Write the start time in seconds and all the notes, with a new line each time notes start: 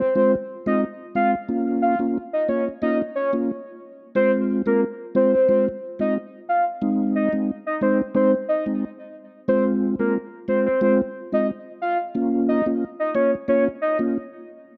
0.00 C5
0.15 G#3 C4 F4 C5
0.66 G#3 C4 F4 D#5
1.15 G#3 C4 F4 F5
1.48 A#3 C#4 F4
1.82 F5
1.99 A#3 C#4 F4
2.33 D#5
2.48 A#3 C#4 F4 C#5
2.82 A#3 C#4 F4 D#5
3.16 C#5
3.33 A#3 C#4 F4
4.15 G#3 C4 F4 C5
4.66 G#3 C4 F4 A#4
5.15 G#3 C4 F4 C5
5.33 C5
5.48 G#3 C4 F4 C5
5.99 G#3 C4 F4 D#5
6.49 F5
6.82 G#3 C4 D#4
7.15 D#5
7.32 G#3 C4 D#4
7.66 D#5
7.81 G#3 C4 D#4 C5
8.15 G#3 C4 D#4 C5
8.49 D#5
8.66 G#3 C4 D#4
9.48 G#3 C4 F4 C5
9.99 G#3 C4 F4 A#4
10.48 G#3 C4 F4 C5
10.66 C5
10.81 G#3 C4 F4 C5
11.32 G#3 C4 F4 D#5
11.82 F5
12.15 A#3 C#4 F4
12.49 D#5
12.66 A#3 C#4 F4
13.00 D#5
13.15 A#3 C#4 F4 C#5
13.48 A#3 C#4 F4 C#5
13.82 D#5
13.99 A#3 C#4 F4